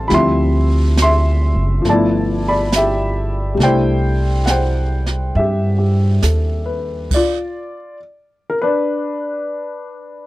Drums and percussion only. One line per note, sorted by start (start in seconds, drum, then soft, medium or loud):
0.10 brush sweep soft
0.10 snare soft
0.97 snare soft
0.97 hi-hat pedal soft
1.85 brush sweep soft
1.85 snare soft
2.72 snare soft
2.72 hi-hat pedal soft
3.60 brush sweep soft
3.60 snare soft
4.47 snare soft
4.47 hi-hat pedal medium
5.06 snare soft
5.35 brush sweep soft
6.22 snare soft
6.22 hi-hat pedal soft
7.11 kick medium
7.11 crash medium